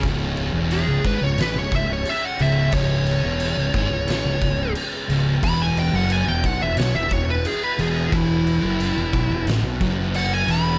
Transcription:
0.03 C#1 C#2 C#3 G#3 C#4, kick, crash
0.37 crash
0.54 E1 E2
0.71 G#4, crash
0.88 C#1 C#2
1.04 G#1 G#2 B4, kick, crash
1.21 C#1 C#2 C#5
1.38 A1 A2 B4, snare, crash
1.55 C#1 C#2
1.59 C#5
1.71 C#1 C#2, kick, crash
1.76 E5
1.93 C#5
2.05 E5, crash
2.25 F#5
2.39 C#1 C#2 E5, crash
2.72 C#1 C#2 B3 C#5, kick, crash
3.06 crash
3.23 E1 E2
3.40 crash
3.57 C#1 C#2
3.74 G#1 G#2, kick, crash
3.91 C#1 C#2
4.07 A1 A2, snare, crash
4.24 C#1 C#2
4.41 C#1 C#2, kick, crash
4.75 crash
5.08 C#1 C#2, crash
5.42 E1 E2 E3 F#4 B5, kick, crash
5.62 G#5
5.77 G5, crash
5.93 F#1 F#2 F#5
6.10 G#5, crash
6.27 E1 E2 G5
6.44 B1 B2 F#5, kick, crash
6.61 E1 E2 E5
6.77 B1 B2 C#5, snare, crash
6.95 E1 E2 E5
7.11 E1 E2 C#5, kick, crash
7.30 B4
7.45 G#4, crash
7.63 B4
7.78 E1 E2 G#4, crash
8.12 E1 E2 E4, kick, crash
8.47 crash
8.63 F#1 F#2
8.80 crash
8.96 E1 E2
9.13 B1 B2, kick, crash
9.30 E1 E2
9.46 A1 A2, snare, crash
9.62 B1 B2
9.81 F#1 F#2, kick, crash
10.14 F#5, crash
10.33 G#5
10.47 E1 E2, snare, crash
10.51 B5

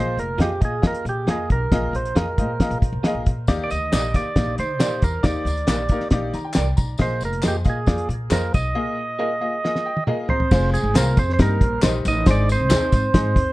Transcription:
Already playing: A#1 A#2 A#3 F4 G#4 C5 D#5
0.17 F1 A#4, closed hi-hat
0.38 F2 A#3 F4 G4 G#4 D#5, snare, closed hi-hat
0.61 A#2 A#3 F4 G#4 D#5, kick, closed hi-hat
0.65 G#4
0.82 F2 A#3 F4 G#4 D#5, kick, snare, closed hi-hat
0.87 A#4
0.94 closed hi-hat
1.05 A#2 G4, closed hi-hat
1.27 F2 A#3 F4 G#4 D#5, snare, closed hi-hat
1.50 B1 A#4, kick, closed hi-hat
1.72 A#1 A#2 A#3 F4 G#4 D#5, kick, snare, closed hi-hat
1.93 A#1 C5, closed hi-hat
2.05 closed hi-hat
2.15 F2 A#3 F4 G#4 A#4 D#5, snare, closed hi-hat
2.38 A#2 A#3 F4 G#4 D#5, kick, closed hi-hat
2.60 A#3 F4 G#4 D#5, kick, snare, closed hi-hat
2.71 A#2, closed hi-hat
2.82 A#2, kick, closed hi-hat
2.92 A#1
3.03 A#3 F4 G#4 D#5, muted upright bass stroke, snare, closed hi-hat
3.15 A#1
3.26 A#2, kick, closed hi-hat
3.47 D#2 D#3 A#3 D#4 G4 D5, kick, snare, closed hi-hat, tambourine
3.64 D5
3.70 D2 D#5, closed hi-hat, tambourine
3.92 A#1 A#3 D#4 G4 A#4 D5, snare, clap, closed hi-hat, tambourine
4.14 D#3 A#3 D#4 G4 D5, kick, closed hi-hat, tambourine
4.36 A#1 A#3 D#4 G4 D5, kick, snare, closed hi-hat, tambourine
4.58 D#3 C5, closed hi-hat, tambourine
4.79 A#2 A#3 D#4 G4 A#4 D5, snare, clap, closed hi-hat, tambourine
5.02 E2 A#4, kick, closed hi-hat, tambourine
5.23 D#2 D#3 A#3 D#4 G4 D5, kick, snare, closed hi-hat, tambourine
5.45 D2, closed hi-hat, tambourine
5.57 closed hi-hat
5.67 A#1 A#3 D#4 G4 A#4 D5, snare, clap, closed hi-hat, tambourine
5.89 D#3 A#3 D#4 G4 A#4, kick, closed hi-hat, tambourine
6.00 snare
6.11 A#1 A#3 D#4 G4 D5, kick, snare, closed hi-hat
6.33 D#3 A#5, closed hi-hat, tambourine
6.45 G5
6.53 C2 G4 A#4 D5 G5, snare, clap, closed hi-hat, tambourine
6.77 B1 A#5, kick, closed hi-hat, tambourine
6.98 A#1 A#2 A#3 F4 G#4 C5 D#5, kick, snare, closed hi-hat, tambourine
7.21 F1, closed hi-hat, tambourine
7.25 A#4
7.33 closed hi-hat
7.42 F2 A#3 F4 G#4 A#4 D#5, snare, clap, closed hi-hat, tambourine
7.48 G4
7.64 A#2 A#3 F4 G#4 D#5, kick, closed hi-hat, tambourine
7.70 G#4
7.86 F2 A#3 F4 G#4 D5, kick, snare, closed hi-hat, tambourine
7.98 closed hi-hat
8.09 A#2, closed hi-hat
8.30 F2 A#3 F4 G#4 A#4 C5 D#5, snare, clap, closed hi-hat, tambourine
8.54 B1 D#5, kick, closed hi-hat, tambourine
8.75 A#2 A#3 F4 G#4 D#5
9.19 A#3 F4 G#4 A#4 D#5
9.41 A#3 F4 G#4 D#5
9.64 A#3 F4 G#4 D#5, snare
9.76 snare
9.86 G5
9.97 high tom
10.07 A#3 F4 G#4 A#4 D#5 F5, mid tom
10.29 C4 C5 A#5, floor tom
10.40 floor tom
10.51 F1 F4 G#4 C5, kick, snare, crash, tambourine
10.74 G#3 G#4, closed hi-hat, tambourine
10.83 G#1
10.94 C2 A#3 F4 G#4 A#4 C5 F5, snare, clap, closed hi-hat, tambourine
11.17 F2 C4 C5, kick, closed hi-hat, tambourine
11.30 C4 C5, snare
11.39 G2 A#3 D#4 G4 A#4, kick, snare, closed hi-hat, tambourine
11.61 A#1, kick, closed hi-hat
11.82 A#1 D#4 G4 A#4 C5 D#5, snare, clap, closed hi-hat, tambourine
12.05 A1 D#4 D#5, closed hi-hat, tambourine
12.26 G#1 G#2 D#4 G#4 C5, kick, snare, closed hi-hat, tambourine
12.31 D5
12.49 C4 C5, closed hi-hat, tambourine
12.60 C2
12.70 D#2 D#4 G#4 C5, snare, clap, closed hi-hat, tambourine
12.92 G#2, kick, closed hi-hat, tambourine
13.14 G#2 D#4 G#4 C5, kick, snare, closed hi-hat, tambourine
13.36 D#2, kick, closed hi-hat

